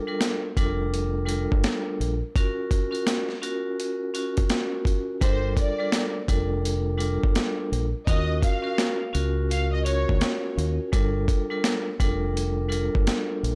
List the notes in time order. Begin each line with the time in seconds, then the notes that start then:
0.07 G3 D4 F4 A4 A#4
0.21 snare, closed hi-hat
0.57 F1 G3 D4 F4 A4 A#4, kick, closed hi-hat
0.94 closed hi-hat
1.26 G3 D4 F4 A4 A#4, closed hi-hat
1.52 G1, kick
1.64 snare, closed hi-hat
2.00 A#1, closed hi-hat
2.36 C#4 F4 F#4 A#4, kick, closed hi-hat
2.71 kick, closed hi-hat
2.91 C#4 F4 F#4 A#4, closed hi-hat
3.07 snare, closed hi-hat
3.29 snare
3.42 C#4 F4 F#4 A#4, closed hi-hat
3.80 closed hi-hat
4.14 C#4 F4 F#4 A#4, closed hi-hat
4.37 kick, closed hi-hat
4.50 snare, closed hi-hat
4.85 kick, closed hi-hat
5.21 G1 G3 D4 F4 A4 A#4 C5, kick, closed hi-hat
5.57 D5, kick, closed hi-hat
5.79 G3 D4 F4 A4 A#4
5.92 snare, closed hi-hat
6.28 F1 G3 D4 F4 A4 A#4, kick, closed hi-hat
6.65 closed hi-hat
6.97 G3 D4 F4 A4 A#4, closed hi-hat
7.24 G1, kick
7.35 snare, closed hi-hat
7.72 A#1, closed hi-hat
8.07 D#2 C#4 F4 F#4 A#4 D#5, kick, closed hi-hat
8.42 F5, kick, closed hi-hat
8.62 C#4 F4 F#4 A#4
8.78 snare, closed hi-hat
9.13 C#2 C#4 F4 F#4 A#4, closed hi-hat
9.50 F5, closed hi-hat
9.73 D#5
9.85 C#4 F4 F#4 A#4 C#5, closed hi-hat
10.09 D2, kick
10.21 snare, closed hi-hat
10.57 D#2, closed hi-hat
10.92 G1 G3 D4 F4 A4 A#4, kick, closed hi-hat
11.28 kick, closed hi-hat
11.50 G3 D4 F4 A4 A#4
11.64 snare, closed hi-hat
12.00 F1 G3 D4 F4 A4 A#4, kick, closed hi-hat
12.37 closed hi-hat
12.69 G3 D4 F4 A4 A#4, closed hi-hat
12.95 G1, kick
13.07 snare, closed hi-hat
13.43 A#1, closed hi-hat